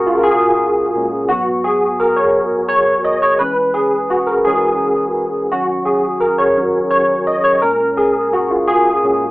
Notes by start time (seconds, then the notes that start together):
Already playing: A#2 G#3 C#4 F#4 G#4 A#4
0.06 F4
0.18 A#4
0.23 G#4
0.95 A#2 G#3 C#4
1.28 G#2 F#3 B3 F#4
1.64 G#4
2.00 A#4
2.16 C#5
2.69 C#5
3.05 D#5
3.22 C#5
3.39 E3 G#3 C#4 B4
3.74 G#4
4.10 F#4
4.27 A#4
4.45 E3 G#3 C#4 G#4
5.51 D#3 F#3 C#4 F#4
5.85 G#4
6.20 A#4
6.38 C#5
6.56 D#3 F#3 C#4
6.91 C#5
7.27 D#5
7.44 C#5
7.62 A#2 G#3 C#4 A#4
7.97 G#4
8.33 F#4
8.51 F4
8.68 G#4
9.03 A#2 G#3 C#4